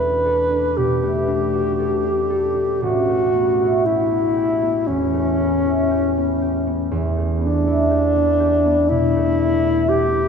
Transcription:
Already playing: harp E2 A3 B3 E4 F#4 G4 A4, alto saxophone B4
0.00 harp D4
0.26 harp A4
0.52 harp D4
0.77 harp B2, alto saxophone G4
1.03 harp A3
1.28 harp D4
1.53 harp F#4
1.79 harp A4
2.04 harp D4
2.30 harp A4
2.56 harp D4
2.82 harp A1, alto saxophone F#4
3.09 harp A3
3.34 harp B3
3.61 harp E4
3.85 alto saxophone E4, harp G4
4.11 harp B3
4.36 harp G4
4.62 harp B3
4.87 harp E2, alto saxophone C#4
5.13 harp A3
5.39 harp B3
5.65 harp E4
5.91 harp G4
6.17 harp B3
6.42 harp G4
6.67 harp B3
6.91 harp E2
7.17 harp A3
7.41 harp B3, alto saxophone D4
7.67 harp E4
7.91 harp G4
8.16 harp B3
8.40 harp G4
8.65 harp B3
8.89 harp B2, alto saxophone E4
9.16 harp A3
9.41 harp B3
9.66 harp E4
9.89 alto saxophone G4, harp G4
10.16 harp B3

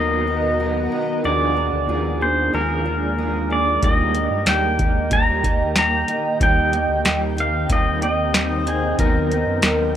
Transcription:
Already playing: analog synth bass D#2, clean electric guitar D#3 F#3 B3 D#4 A#4, ambient pad D#3 B3 F#4 A#4, twelve-string acoustic guitar D#3 D#4, pedal steel guitar D#5
0.26 clean electric guitar B3 D#4 A#4
0.58 clean electric guitar F#3 B3 D#4
0.62 clean electric guitar A#4
0.91 clean electric guitar D#4 A#4
0.95 clean electric guitar B3
1.23 analog synth bass D#2, clean electric guitar D#3 F3 A#3 D4 G#4, ambient pad G#3 A#3 D4 F4, pedal steel guitar D5
1.55 clean electric guitar A#3 D4 G#4
1.73 analog synth bass D2
1.87 analog synth bass D#2, clean electric guitar F3 A#3 D4 G#4
2.20 clean electric guitar D4 G#4, pedal steel guitar C5
2.24 clean electric guitar A#3
2.52 analog synth bass D#2, clean electric guitar D#3 F3 A#3 D4 G#4, pedal steel guitar A#4
2.84 clean electric guitar D4 G#4
2.88 clean electric guitar A#3
3.17 clean electric guitar F3 A#3 D4 G#4
3.50 clean electric guitar A#3 D4 G#4, pedal steel guitar D5
3.81 analog synth bass D#2, clean electric guitar D#3 G3 A#3 D#4 G4, ambient pad D#3 G5, pedal steel guitar D#5, kick, closed hi-hat
4.14 clean electric guitar D#4 G4, closed hi-hat
4.18 clean electric guitar A#3
4.31 analog synth bass G2
4.46 analog synth bass D#2, clean electric guitar G3 A#3 D#4, pedal steel guitar G5, snare, closed hi-hat
4.50 clean electric guitar G4
4.79 clean electric guitar A#3 D#4 G4, kick, closed hi-hat
5.11 clean electric guitar D#3 G3 A#3 D#4 G4, pedal steel guitar A#5, kick, closed hi-hat
5.43 clean electric guitar D#4 G4, kick, closed hi-hat
5.47 clean electric guitar A#3
5.75 clean electric guitar G3 A#3 D#4, pedal steel guitar A#5, snare, closed hi-hat
5.79 clean electric guitar G4
6.08 clean electric guitar A#3 D#4 G4, closed hi-hat
6.39 analog synth bass D#2, clean electric guitar D#3 G3 A#3 D#4 G4, ambient pad C4, pedal steel guitar G5, kick, closed hi-hat
6.72 clean electric guitar D#4 G4, closed hi-hat
6.76 clean electric guitar A#3
6.89 analog synth bass D2
7.04 analog synth bass D#2, clean electric guitar G3 A#3 D#4 G4, snare, closed hi-hat
7.36 clean electric guitar A#3 D#4 G4, closed hi-hat
7.40 pedal steel guitar F5
7.68 analog synth bass D#2, clean electric guitar D#3 G3 A#3 D#4 G4, kick, closed hi-hat
7.73 pedal steel guitar D#5
8.01 clean electric guitar D#4 G4, pedal steel guitar D#5, closed hi-hat
8.05 clean electric guitar A#3
8.33 clean electric guitar G3 A#3 D#4 G4, snare, closed hi-hat
8.67 clean electric guitar A#3 D#4, pedal steel guitar G#4, closed hi-hat
8.97 analog synth bass D#2, clean electric guitar D#3 F#3 B3 D#4 A#4, ambient pad B3 F#4 A#4, pedal steel guitar A#4, kick, closed hi-hat
9.29 clean electric guitar B3 D#4 A#4, closed hi-hat
9.47 analog synth bass F#2
9.62 analog synth bass D#2, clean electric guitar F#3 B3 D#4 A#4, snare, closed hi-hat

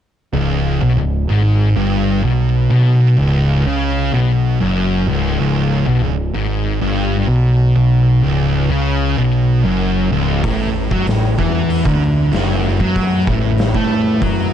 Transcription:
0.33 picked electric bass C#1, distorted electric guitar C#2
0.81 picked electric bass B1, distorted electric guitar B2
0.97 picked electric bass C#1, distorted electric guitar C#2
1.27 picked electric bass G#1, distorted electric guitar G#2
1.76 picked electric bass G1, distorted electric guitar G2
2.23 picked electric bass B1, distorted electric guitar B2
2.69 picked electric bass B1, distorted electric guitar B2
3.18 picked electric bass C#1, distorted electric guitar C#2
3.66 picked electric bass C#2, distorted electric guitar C#3
4.13 picked electric bass B1, distorted electric guitar B2
4.61 picked electric bass F#1, distorted electric guitar F#2
5.07 picked electric bass C#1, distorted electric guitar C#2
5.39 picked electric bass C#1, distorted electric guitar C#2
5.87 picked electric bass B1, distorted electric guitar B2
6.02 picked electric bass C#1, distorted electric guitar C#2
6.34 picked electric bass G#1, distorted electric guitar G#2
6.81 picked electric bass G1, distorted electric guitar G2
7.27 picked electric bass B1, distorted electric guitar B2
7.76 picked electric bass B1, distorted electric guitar B2
8.23 picked electric bass C#1, distorted electric guitar C#2
8.69 picked electric bass C#2, distorted electric guitar C#3
9.17 picked electric bass B1, distorted electric guitar B2
9.63 picked electric bass F#1, distorted electric guitar F#2
10.11 picked electric bass C#1, distorted electric guitar C#2
10.44 picked electric bass A1, distorted electric guitar A2, synth drone A3 E4 B4, kick, open hi-hat
10.91 picked electric bass F#2, distorted electric guitar F#3, kick
11.06 picked electric bass A1, distorted electric guitar A2, snare, open hi-hat
11.39 picked electric bass E2, distorted electric guitar E3, kick
11.70 open hi-hat
11.85 picked electric bass D2, distorted electric guitar D3, kick
12.32 picked electric bass F#1, distorted electric guitar F#2, snare, open hi-hat
12.80 picked electric bass F#2, distorted electric guitar F#3, kick
12.96 kick, open hi-hat
13.27 picked electric bass A1, distorted electric guitar A2, kick
13.58 snare, open hi-hat
13.74 picked electric bass A2, distorted electric guitar A3, kick
14.22 picked electric bass F#2, distorted electric guitar F#3, kick, open hi-hat

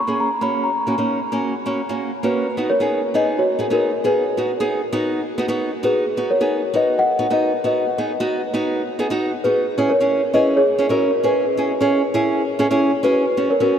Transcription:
Already playing: celesta C#6
0.07 nylon-string guitar A#3 C#4 G#4
0.20 celesta A#5
0.41 nylon-string guitar A#3 C#4 F#4, celesta B5
0.64 celesta A#5
0.87 nylon-string guitar A#3 C#4 F#4
0.98 nylon-string guitar A#3 C#4 D#4
1.32 nylon-string guitar A#3 C#4 F#4
1.66 nylon-string guitar A#3 C#4 F#4
1.89 nylon-string guitar A#3 C#4 F#4
2.23 nylon-string guitar A#3 C#4 F#4, celesta F#4 B4
2.57 nylon-string guitar B3 D#4 F#4
2.70 celesta A#4 C#5
2.80 nylon-string guitar B3 D#4 G#4
3.14 nylon-string guitar B3 D#4 G#4, celesta B4 D#5
3.38 celesta F#4 C#5
3.59 nylon-string guitar B3 D#4 G#4
3.70 nylon-string guitar B3 D#4 G#4, celesta F#4 A#4
4.04 nylon-string guitar B3 D#4 G#4, celesta G#4 B4
4.37 nylon-string guitar B3 D#4 F#4
4.60 nylon-string guitar B3 D#4 G#4
4.93 nylon-string guitar B3 D#4 F#4
5.38 nylon-string guitar B3 D#4 F#4
5.48 nylon-string guitar B3 D#4 F#4
5.83 nylon-string guitar B3 D#4 F#4, celesta G#4 B4
6.17 nylon-string guitar B3 D#4 F#4
6.30 celesta A#4 C#5
6.41 nylon-string guitar B3 D#4 G#4
6.74 nylon-string guitar B3 D#4 F#4, celesta B4 D#5
6.98 celesta D#5 F#5
7.19 nylon-string guitar B3 D#4 F#4
7.30 nylon-string guitar B3 D#4 F#4, celesta B4 D#5
7.64 nylon-string guitar B3 D#4 F#4, celesta B4 D#5
7.98 nylon-string guitar B3 D#4 G#4
8.20 nylon-string guitar B3 D#4 F#4
8.54 nylon-string guitar B3 D#4 F#4
8.99 nylon-string guitar B3 D#4 G#4
9.10 nylon-string guitar B3 D#4 F#4
9.44 nylon-string guitar B3 D#4 F#4, celesta G#4 B4
9.78 nylon-string guitar C#4 E4 G#4
9.89 celesta A#4 C#5
10.00 nylon-string guitar C#4 E4 G#4
10.34 nylon-string guitar C#4 E4 G#4, celesta B4 D#5
10.57 celesta G#4 C#5
10.78 nylon-string guitar C#4 E4 G#4
10.89 nylon-string guitar C#4 E4 A#4, celesta F#4 A#4
11.23 nylon-string guitar C#4 E4 G#4, celesta G#4 B4
11.57 nylon-string guitar C#4 E4 G#4
11.81 nylon-string guitar C#4 E4 G#4
12.14 nylon-string guitar C#4 E4 G#4
12.59 nylon-string guitar C#4 E4 G#4
12.71 nylon-string guitar C#4 E4 G#4
13.03 nylon-string guitar C#4 E4 G#4, celesta F#4 B4
13.37 nylon-string guitar B3 C#4 F#4
13.50 celesta A#4 C#5
13.60 nylon-string guitar B3 C#4 F#4, celesta F#4 A#4

